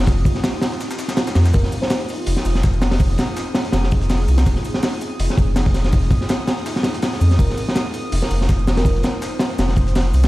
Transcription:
0.00 0.24 F1 medium
0.00 10.28 C4 medium
0.00 10.28 D#4 medium
0.00 10.28 F4 medium
0.00 1.52 G4 medium
0.00 1.53 D#6 medium
0.06 kick loud
0.06 snare loud
0.06 open hi-hat medium
0.06 shaker medium
0.17 snare soft
0.25 kick medium
0.25 open hi-hat medium
0.25 shaker medium
0.35 snare soft
0.44 snare loud
0.44 open hi-hat medium
0.44 shaker medium
0.62 snare medium
0.62 open hi-hat medium
0.62 shaker medium
0.72 snare soft
0.81 snare loud
0.81 open hi-hat medium
0.81 shaker medium
0.91 snare loud
0.91 shaker medium
0.98 snare loud
0.98 open hi-hat medium
0.98 shaker medium
1.08 snare soft
1.08 snare loud
1.08 shaker medium
1.17 snare loud
1.17 open hi-hat medium
1.17 shaker medium
1.27 snare soft
1.27 snare loud
1.27 shaker medium
1.35 1.52 F2 loud
1.35 snare loud
1.35 open hi-hat medium
1.35 shaker medium
1.45 snare loud
1.45 shaker medium
1.54 1.63 F1 loud
1.54 7.37 G#4 medium
1.54 1.76 A#4 medium
1.54 10.28 D#6 medium
1.54 kick loud
1.54 open hi-hat medium
1.54 shaker medium
1.63 snare soft
1.72 open hi-hat medium
1.72 shaker medium
1.82 2.19 C5 medium
1.82 snare medium
1.90 snare loud
1.90 open hi-hat medium
1.90 shaker medium
2.09 open hi-hat medium
2.09 shaker medium
2.26 2.36 F1 medium
2.26 open hi-hat medium
2.37 snare soft
2.37 closed hi-hat soft
2.45 3.17 F1 medium
2.45 open hi-hat medium
2.45 shaker medium
2.55 snare soft
2.63 kick medium
2.63 snare loud
2.63 open hi-hat medium
2.63 shaker medium
2.73 closed hi-hat soft
2.82 snare loud
2.82 open hi-hat medium
2.82 shaker medium
2.91 snare loud
2.91 closed hi-hat soft
2.91 open hi-hat medium
3.00 kick loud
3.00 open hi-hat medium
3.00 shaker medium
3.10 snare soft
3.18 snare loud
3.18 open hi-hat medium
3.18 shaker medium
3.37 snare loud
3.37 open hi-hat medium
3.37 shaker medium
3.54 snare loud
3.54 open hi-hat medium
3.54 shaker medium
3.65 snare soft
3.72 4.27 F1 loud
3.72 snare loud
3.72 open hi-hat medium
3.72 shaker medium
3.83 snare medium
3.92 kick loud
3.92 open hi-hat medium
3.92 shaker medium
4.02 snare medium
4.02 closed hi-hat soft
4.09 snare loud
4.09 open hi-hat medium
4.09 shaker medium
4.28 4.45 C2 loud
4.28 open hi-hat medium
4.28 shaker medium
4.38 snare loud
4.38 open hi-hat medium
4.38 shaker medium
4.46 4.55 F1 loud
4.46 kick loud
4.46 open hi-hat medium
4.46 shaker medium
4.56 snare soft
4.65 open hi-hat medium
4.65 shaker medium
4.74 snare medium
4.83 snare loud
4.83 open hi-hat loud
4.83 shaker medium
5.01 open hi-hat medium
5.01 shaker medium
5.19 5.29 F1 medium
5.19 open hi-hat medium
5.29 snare soft
5.29 closed hi-hat soft
5.37 6.10 F1 medium
5.37 kick loud
5.37 open hi-hat medium
5.37 shaker medium
5.56 snare loud
5.56 open hi-hat medium
5.56 shaker medium
5.66 kick medium
5.66 closed hi-hat soft
5.74 snare medium
5.74 open hi-hat medium
5.74 shaker medium
5.84 snare medium
5.84 closed hi-hat soft
5.93 kick loud
5.93 open hi-hat medium
5.93 shaker medium
6.03 snare soft
6.11 kick medium
6.11 open hi-hat medium
6.11 shaker medium
6.21 snare soft
6.29 snare loud
6.29 open hi-hat medium
6.29 shaker medium
6.47 snare loud
6.47 open hi-hat medium
6.47 shaker medium
6.58 snare soft
6.66 snare loud
6.66 open hi-hat medium
6.66 shaker medium
6.76 snare medium
6.83 snare loud
6.83 open hi-hat medium
6.83 shaker medium
6.94 snare medium
6.94 closed hi-hat soft
7.02 snare loud
7.02 open hi-hat medium
7.02 shaker medium
7.13 snare soft
7.21 7.38 F2 loud
7.21 open hi-hat medium
7.21 shaker medium
7.31 snare soft
7.31 closed hi-hat soft
7.39 7.48 F1 loud
7.39 7.62 A#4 medium
7.39 10.28 C5 medium
7.39 kick loud
7.39 open hi-hat medium
7.39 shaker medium
7.50 snare soft
7.57 open hi-hat medium
7.57 shaker medium
7.69 snare medium
7.76 snare loud
7.76 open hi-hat medium
7.76 shaker medium
7.94 open hi-hat medium
7.94 shaker medium
8.12 8.21 F1 medium
8.12 open hi-hat loud
8.12 open hi-hat medium
8.22 8.44 A#4 medium
8.22 snare soft
8.22 closed hi-hat soft
8.31 9.03 F1 medium
8.31 open hi-hat medium
8.31 shaker medium
8.41 snare soft
8.49 kick medium
8.49 snare loud
8.49 open hi-hat medium
8.49 shaker medium
8.59 closed hi-hat soft
8.67 snare loud
8.67 open hi-hat medium
8.67 shaker medium
8.77 9.28 A#4 medium
8.77 snare loud
8.77 closed hi-hat soft
8.77 open hi-hat medium
8.85 kick loud
8.85 open hi-hat medium
8.85 shaker medium
8.95 snare soft
9.03 snare loud
9.03 open hi-hat medium
9.03 shaker medium
9.22 snare loud
9.22 open hi-hat medium
9.22 shaker medium
9.39 snare loud
9.39 open hi-hat medium
9.39 shaker medium
9.50 snare soft
9.59 10.12 F1 loud
9.59 snare loud
9.59 open hi-hat medium
9.59 shaker medium
9.68 snare medium
9.76 kick medium
9.76 open hi-hat medium
9.76 shaker medium
9.87 snare medium
9.87 closed hi-hat soft
9.95 snare loud
9.95 open hi-hat medium
9.95 shaker medium
10.13 10.28 C2 medium
10.13 open hi-hat medium
10.13 shaker medium
10.24 snare loud
10.24 open hi-hat medium
10.24 shaker medium

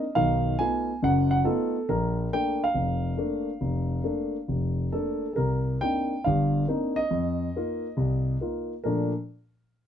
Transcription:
0.00 0.12 D#5 medium
0.15 0.54 B1 medium
0.15 0.54 D#3 medium
0.15 0.61 F5 loud
0.59 0.90 A3 soft
0.59 0.90 B3 soft
0.59 0.90 D#4 soft
0.59 0.90 F4 medium
0.59 0.99 G#5 loud
1.02 1.40 F#1 medium
1.02 1.40 F#2 medium
1.02 1.29 F#5 loud
1.31 1.44 F#5 medium
1.44 1.75 A3 medium
1.44 1.75 B3 soft
1.44 1.75 D#4 medium
1.44 1.76 F4 medium
1.44 1.90 A4 medium
1.89 2.26 A#1 medium
1.89 2.29 A#4 medium
2.33 2.63 A3 medium
2.33 2.63 A#3 soft
2.33 2.63 D4 medium
2.33 2.62 G5 loud
2.64 4.91 F5 medium
2.74 3.12 F1 medium
3.17 3.48 A3 medium
3.17 3.49 A#3 soft
3.17 3.49 D4 medium
3.61 3.99 F1 medium
4.04 4.35 A3 medium
4.04 4.35 A#3 soft
4.04 4.35 D4 medium
4.48 4.87 F1 medium
4.92 5.24 A3 medium
4.92 5.25 A#3 soft
4.92 5.25 D4 soft
4.92 5.32 A4 medium
5.33 5.38 A4 medium
5.33 5.82 A#4 medium
5.38 5.76 C2 medium
5.81 6.13 A#3 soft
5.81 6.13 C4 soft
5.81 6.13 D4 soft
5.81 6.13 D#4 soft
5.81 6.26 G5 loud
6.24 6.64 G1 medium
6.24 6.63 G2 medium
6.24 6.65 F5 medium
6.68 6.99 A#3 soft
6.68 6.98 C4 soft
6.68 6.99 D4 soft
6.68 6.99 D#4 medium
6.96 8.37 D#5 loud
7.11 7.48 F2 medium
7.56 7.86 A#3 soft
7.56 7.85 D#4 soft
7.56 7.86 F4 medium
7.97 8.35 C2 medium
8.41 8.72 A#3 soft
8.41 8.73 D#4 soft
8.41 8.73 F4 soft
8.84 9.11 A#2 medium
8.84 9.12 F3 medium
8.84 9.11 A3 medium
8.84 9.12 D4 medium
8.84 9.11 A#4 medium

